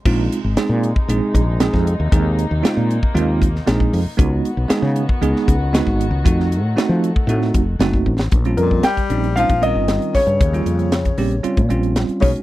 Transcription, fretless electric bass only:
0.06 0.27 A#1 medium
0.44 0.55 G#1 medium
0.57 muted fretless electric bass stroke soft
0.69 0.91 A#2 medium
1.08 1.19 A#1 medium
1.34 1.67 A#1 medium
1.73 1.95 F2 medium
2.00 2.10 D#2 medium
2.12 2.45 D#2 loud
2.51 2.62 D#2 medium
2.77 2.99 A#2 medium
3.15 3.59 D#2 loud
3.68 3.89 A#1 medium
3.93 4.04 F2 medium
4.06 muted fretless electric bass stroke soft
4.19 4.41 C#2 loud
4.57 4.68 B1 medium
4.82 5.05 C#3 medium
5.22 5.33 C#2 medium
5.48 5.81 C#2 medium
5.87 6.09 G#1 medium
6.11 6.22 C#2 medium
6.26 6.63 F2 medium
6.63 6.74 A2 medium
6.89 7.12 F3 medium
7.27 7.50 A2 medium
7.55 7.78 F1 medium
7.79 8.03 F#1 medium
8.06 8.30 A1 medium
8.32 8.54 A#1 medium
8.57 8.80 F2 medium
9.10 9.44 A#1 medium
9.50 9.72 A#1 medium
9.75 9.98 G1 medium
10.27 10.38 G2 medium
10.41 10.63 D#2 medium
10.66 11.11 F2 medium
11.18 11.40 A#1 medium
11.57 11.69 A#2 medium
11.71 12.04 A#1 medium
12.09 muted fretless electric bass stroke soft
12.22 12.34 B1 medium

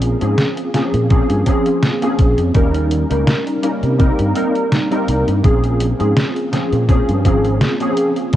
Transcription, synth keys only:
0.00 0.16 F3 medium
0.00 0.16 A#3 medium
0.00 0.16 C4 medium
0.00 0.17 C#4 medium
0.00 0.17 G#4 loud
0.20 0.70 F3 medium
0.20 0.70 A#3 medium
0.20 0.70 C4 medium
0.20 0.70 C#4 medium
0.20 0.70 G#4 medium
0.74 1.06 F3 medium
0.74 1.06 A#3 medium
0.74 1.06 C4 medium
0.74 1.07 C#4 medium
0.74 1.07 G#4 medium
1.09 1.42 F3 loud
1.09 1.42 A#3 medium
1.09 1.43 C4 medium
1.09 1.43 C#4 medium
1.09 1.43 G#4 loud
1.46 1.97 F3 loud
1.46 1.98 A#3 medium
1.46 1.98 C4 medium
1.46 1.98 C#4 medium
1.46 1.98 G#4 loud
2.01 2.51 F3 loud
2.01 2.51 A#3 medium
2.01 2.51 C4 medium
2.01 2.51 C#4 medium
2.01 2.51 G#4 loud
2.54 3.06 G3 medium
2.54 3.06 A#3 medium
2.54 3.06 C#4 medium
2.54 3.06 D#4 medium
2.54 3.06 A#4 loud
3.09 3.59 G3 medium
3.09 3.59 A#3 medium
3.09 3.59 C#4 medium
3.09 3.59 D#4 medium
3.09 3.60 A#4 medium
3.62 3.95 G3 medium
3.62 3.95 A#3 medium
3.62 3.95 C#4 medium
3.62 3.96 D#4 medium
3.62 3.96 A#4 medium
3.98 4.31 G3 medium
3.98 4.31 A#3 medium
3.98 4.31 C4 medium
3.98 4.32 D#4 medium
3.98 4.32 A#4 loud
4.34 4.86 G3 loud
4.34 4.86 A#3 medium
4.34 4.86 C4 medium
4.34 4.87 D#4 medium
4.34 4.87 A#4 loud
4.90 5.40 G3 loud
4.90 5.40 A#3 medium
4.90 5.40 C4 medium
4.90 5.40 D#4 medium
4.90 5.40 A#4 loud
5.42 5.94 F3 medium
5.42 5.95 A#3 medium
5.42 5.95 C4 medium
5.42 5.95 C#4 medium
5.42 5.95 G#4 loud
5.99 6.48 F3 medium
5.99 6.48 A#3 medium
5.99 6.48 C4 medium
5.99 6.49 C#4 medium
5.99 6.49 G#4 medium
6.52 6.84 F3 medium
6.52 6.85 A#3 medium
6.52 6.85 C4 medium
6.52 6.85 C#4 medium
6.52 6.85 G#4 medium
6.88 7.21 F3 medium
6.88 7.21 A#3 medium
6.88 7.21 C4 medium
6.88 7.21 C#4 medium
6.88 7.21 G#4 loud
7.25 7.76 F3 loud
7.25 7.76 A#3 medium
7.25 7.76 C4 medium
7.25 7.76 C#4 medium
7.25 7.77 G#4 loud
7.80 8.29 F3 medium
7.80 8.29 A#3 medium
7.80 8.30 C4 medium
7.80 8.30 C#4 medium
7.80 8.30 G#4 loud

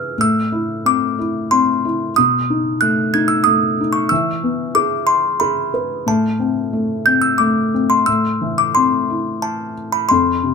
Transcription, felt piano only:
0.00 0.14 E3 medium
0.00 0.20 G#4 soft
0.00 0.20 B4 medium
0.18 2.11 A2 medium
0.52 1.17 E4 soft
0.85 1.50 C4 soft
1.19 1.83 E4 soft
1.52 2.14 C4 medium
1.85 2.15 E4 soft
2.18 4.08 B2 medium
2.50 3.13 D#4 medium
2.82 3.45 A3 soft
3.14 3.79 D#4 medium
3.47 4.09 A3 medium
3.80 4.11 D#4 soft
4.11 6.03 E3 medium
4.43 5.70 B3 medium
4.75 5.39 G#4 soft
5.41 6.05 G#4 soft
5.74 6.06 B4 soft
6.06 8.03 A2 medium
6.39 7.06 C4 soft
6.73 7.38 A3 soft
7.07 7.72 C4 soft
7.40 8.05 A3 medium
7.74 8.06 C4 soft
8.07 10.05 A2 medium
8.41 9.72 E3 soft
8.76 10.06 C4 soft
9.10 10.07 E4 soft
10.11 10.54 F2 medium
10.43 10.54 C3 soft

